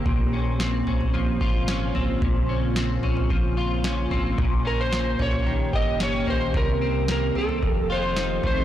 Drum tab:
SD |----o-------o---|----o-------o---|----o-------o---|----o-------o---|
FT |o-----ooo-----o-|o-----ooo-----o-|o-----ooo-----o-|o-----ooo-----o-|
BD |o---------o-----|o-------o-------|o---------o-----|o-------o-----o-|